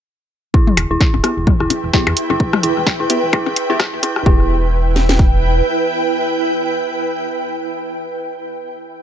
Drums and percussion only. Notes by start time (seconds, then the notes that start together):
0.54 kick, percussion blips
0.67 mid tom
0.77 cross-stick, closed hi-hat, percussion blips
1.01 kick, snare
1.14 percussion blips
1.24 cross-stick, closed hi-hat
1.47 kick, mid tom
1.60 cross-stick
1.70 closed hi-hat, percussion blips
1.93 kick, snare, closed hi-hat
2.07 cross-stick, percussion blips
2.17 closed hi-hat
2.30 percussion blips
2.40 kick
2.53 cross-stick, mid tom
2.63 closed hi-hat
2.87 kick, cross-stick, snare, percussion blips
3.10 closed hi-hat
3.33 kick, cross-stick, percussion blips
3.46 percussion blips
3.56 closed hi-hat
3.80 kick, cross-stick, snare, closed hi-hat
4.03 closed hi-hat, percussion blips
4.16 cross-stick
4.26 kick
4.96 snare
5.09 snare
5.19 kick